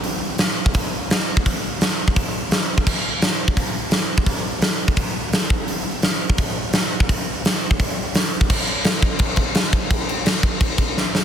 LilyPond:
\new DrumStaff \with { instrumentName = "Drums" } \drummode { \time 4/4 \tempo 4 = 171 hho4 <hho sn>8. bd16 <hho bd>4 <hho sn>8. bd16 | <hho bd>4 <hho sn>8. bd16 <hho bd>4 <hho sn>8. bd16 | <cymc bd>4 <hho sn>8. bd16 <hho bd>4 <hho sn>8. bd16 | <hho bd>4 <hho sn>8. bd16 <hho bd>4 <hho sn>8 bd8 |
hho4 <hho sn>8. bd16 <hho bd>4 <hho sn>8. bd16 | <hho bd>4 <hho sn>8. bd16 <hho bd>4 <hho sn>8. bd16 | <cymc bd>8 cymc8 <cymc sn>8 <cymc bd>8 <cymc bd>8 <cymc bd>8 <cymc sn>8 <cymc bd>8 | <cymc bd>8 cymc8 <cymc sn>8 <cymc bd>8 <cymc bd>8 <cymc bd>8 sn8 sn8 | }